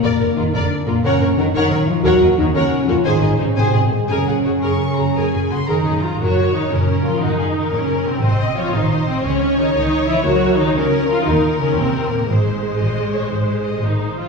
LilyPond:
<<
  \new Staff \with { instrumentName = "Violin section" } { \time 12/8 \key ges \lydian \tempo 4. = 118 d''8 bes'8 f'8 d''8 r8 f'8 ges''8 des''8 bes'8 ges''8 des''8 r8 | ges''8 ees''8 des''8 ges''8 r8 des''8 aes''8 ees''8 c''8 aes''8 ees''8 r8 | aes''8 ges''8 des''8 des'''4 bes''8 aes''4 c'''8 bes''4. | bes'8 bes'8 bes'8 bes'8 bes'8 bes'8 bes'8 bes'8 bes'8 bes'8 bes'8 bes'8 |
ees''8 ees''8 ees''8 ees''8 ees''8 ees''8 ees''8 ees''8 ees''8 ees''8 ees''8 ees''8 | bes'8 bes'8 bes'8 bes'8 bes'8 bes'8 bes'8 bes'8 bes'8 bes'8 bes'8 bes'8 | c''8 c''8 c''8 ees''4 des''8 c''4 ees''8 c''4. | }
  \new Staff \with { instrumentName = "Violin section" } { \time 12/8 \key ges \lydian d''8 bes'8 f'8 d''8 r8 f'8 des''8 bes'8 ges'8 des''8 bes'8 r8 | des''8 bes'8 ges'8 des''8 r8 ges'8 c''8 aes'8 ees'8 c''8 aes'8 r8 | bes'8 aes'8 ges'8 bes'8 r8 ges'8 bes'8 aes'8 ges'8 bes'8 aes'8 r8 | des''4. bes'4. ges'8 aes'8 bes'2 |
c''8 ees''8 des''8 c''4. des''2.~ | des''4. bes'4. bes'2. | c''1~ c''4~ c''16 r8. | }
  \new Staff \with { instrumentName = "Viola section" } { \time 12/8 \key ges \lydian << { bes'8 bes'8 bes'8 bes'8 r8 bes'8 bes'8 bes'8 bes'8 bes'8 bes'8 r8 | bes'8 bes'8 bes'8 bes'8 r8 bes'8 aes'8 aes'8 aes'8 aes'8 aes'8 r8 | aes'8 aes'8 aes'8 aes'8 r8 aes'8 aes'8 aes'8 aes'8 aes'8 aes'8 r8 | r1. |
r1. | r1. | r1. | } \\ { r1. | r1. | r1 r8 ees'4 f'8 | ges'4 ees'8 des'4 f'8 ees'4. des'4 c'8~ |
c'4 f'8 ees'4 c'8 des'4 ees'8 ees'4 fes'8 | ges'4 ees'8 des'4 f'8 ees'4 des'8 c'4 bes8 | aes1~ aes8 ees'4 f'8 | } >> }
  \new Staff \with { instrumentName = "French horn section" } { \time 12/8 \key ges \lydian bes4 ees'8 d'4 bes8 des'4 ees'8 ees'4 f'8 | ges'4 ees'8 des'4 f'8 ees'4 des'8 c'4 aes8 | des'1~ des'4. r8 | r1. |
r1. | r1. | r1. | }
  \new Staff \with { instrumentName = "Cello section" } { \clef bass \time 12/8 \key ges \lydian bes,4 ees8 d4 bes,8 des4 ees8 ees4 f8 | ges4 ees8 des4 f8 ees4 des8 c4 aes,8 | des1~ des8 ees4 f8 | ges4 ees8 des4 f8 ees4. des4 c8~ |
c4 f8 ees4 c8 des4 ees8 ees4 fes8 | ges4 ees8 des4 f8 ees4 des8 c4 bes,8 | aes,1~ aes,8 ees4 f8 | }
  \new Staff \with { instrumentName = "Double bass section" } { \clef bass \time 12/8 \key ges \lydian f,,8 f,,8 f,,8 f,,8 r8 f,,8 ges,,8 ges,,8 ges,,8 ges,,8 ges,,8 r8 | ees,8 ees,8 ees,8 ees,8 r8 ees,8 aes,,8 aes,,8 aes,,8 aes,,8 aes,,8 r8 | ges,,8 ges,,8 ges,,8 ges,,8 r8 ges,,8 ges,,8 ges,,8 ges,,8 ges,,8 ges,,8 r8 | ges,,4. ges,,4. ges,,4. ges,,4. |
aes,,4. aes,,4. des,4. des,4. | des,4. des,4. ees,4. ees,4. | aes,,4. aes,,4. aes,,4. aes,,4. | }
>>